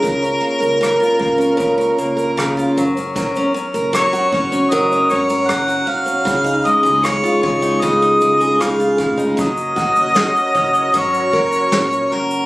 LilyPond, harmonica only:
\new Staff \with { instrumentName = "Harmonica" } { \time 4/4 \key fis \major \tempo 4 = 77 ais'2.~ ais'8 r8 | r4 cis''8 cis''8 dis''8 cis''8 fis''8 eis''8~ | eis''8 dis''8 cis''8 cis''8 dis''4 eis''8. r16 | dis''2 cis''4. ais'8 | }